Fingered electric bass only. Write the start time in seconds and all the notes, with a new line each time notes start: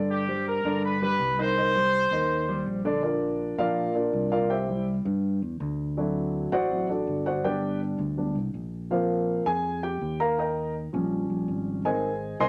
Already playing: G2
0.64 G2
1.19 C2
2.11 D#2
2.66 A#1
3.58 A#2
4.13 C2
5.05 G2
5.42 E2
5.60 D2
6.52 A1
7.07 G1
7.99 D2
8.35 C2
8.54 A#1
9.46 F2
10.01 D#2
10.94 A#1
11.30 A#1
11.48 G#1
12.40 C2